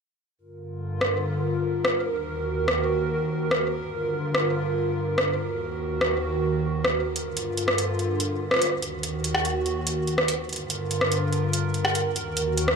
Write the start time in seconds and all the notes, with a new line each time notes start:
0.39 G2 D3 F4 A#4
1.01 cross-stick
1.85 cross-stick
2.05 D#2 D#3 F#4
2.68 cross-stick
3.51 cross-stick
3.72 G2 D3 F4
4.35 cross-stick
5.18 cross-stick
5.38 D#2 D#3 F#4
6.01 cross-stick
6.84 cross-stick
7.05 G2 D3 F4
7.16 closed hi-hat
7.37 closed hi-hat
7.57 closed hi-hat
7.68 cross-stick
7.78 closed hi-hat
7.99 closed hi-hat
8.20 closed hi-hat
8.51 cross-stick
8.54 cross-stick
8.56 cross-stick
8.59 cross-stick
8.62 cross-stick, closed hi-hat
8.64 cross-stick
8.67 cross-stick
8.69 D#2 D#3 F#4, cross-stick
8.82 closed hi-hat
9.03 closed hi-hat
9.24 closed hi-hat
9.35 cross-stick
9.45 closed hi-hat
9.66 closed hi-hat
9.87 closed hi-hat
10.07 closed hi-hat
10.18 cross-stick
10.28 closed hi-hat
10.39 G2 D3 F4 A#4
10.49 closed hi-hat
10.53 closed hi-hat
10.56 closed hi-hat
10.70 closed hi-hat
10.91 closed hi-hat
11.01 cross-stick
11.12 closed hi-hat
11.33 closed hi-hat
11.53 closed hi-hat
11.74 closed hi-hat
11.85 cross-stick
11.95 closed hi-hat
12.05 D#2 D#3 F#4
12.16 closed hi-hat
12.37 closed hi-hat
12.58 closed hi-hat
12.68 cross-stick